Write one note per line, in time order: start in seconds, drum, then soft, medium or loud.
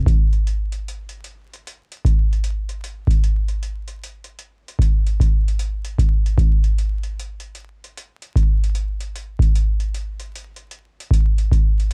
0.06 kick loud
0.06 closed hi-hat medium
0.33 closed hi-hat soft
0.47 closed hi-hat medium
0.72 closed hi-hat soft
0.88 closed hi-hat medium
1.09 closed hi-hat soft
1.24 closed hi-hat medium
1.53 closed hi-hat soft
1.67 closed hi-hat medium
1.91 closed hi-hat soft
2.04 kick medium
2.04 closed hi-hat medium
2.33 closed hi-hat soft
2.44 closed hi-hat medium
2.69 closed hi-hat soft
2.84 closed hi-hat medium
3.07 kick medium
3.07 closed hi-hat soft
3.24 closed hi-hat medium
3.48 closed hi-hat soft
3.63 closed hi-hat medium
3.88 closed hi-hat soft
4.04 closed hi-hat medium
4.24 closed hi-hat soft
4.39 closed hi-hat soft
4.68 closed hi-hat soft
4.79 kick medium
4.79 closed hi-hat medium
5.07 closed hi-hat soft
5.20 kick medium
5.20 closed hi-hat medium
5.48 closed hi-hat soft
5.59 closed hi-hat medium
5.85 closed hi-hat medium
5.98 kick medium
5.98 closed hi-hat medium
6.26 closed hi-hat soft
6.38 kick loud
6.38 closed hi-hat medium
6.64 closed hi-hat soft
6.78 closed hi-hat medium
7.03 closed hi-hat soft
7.19 closed hi-hat medium
7.40 closed hi-hat soft
7.55 closed hi-hat soft
7.84 closed hi-hat soft
7.98 closed hi-hat medium
8.22 closed hi-hat soft
8.36 kick medium
8.36 closed hi-hat medium
8.64 closed hi-hat soft
8.75 closed hi-hat medium
9.00 closed hi-hat medium
9.15 closed hi-hat medium
9.39 kick medium
9.39 closed hi-hat soft
9.55 closed hi-hat medium
9.80 closed hi-hat soft
9.94 closed hi-hat medium
10.19 closed hi-hat soft
10.35 closed hi-hat medium
10.56 closed hi-hat soft
10.71 closed hi-hat soft
11.00 closed hi-hat medium
11.11 kick medium
11.11 closed hi-hat medium
11.38 closed hi-hat soft
11.52 kick medium
11.52 closed hi-hat medium
11.80 closed hi-hat soft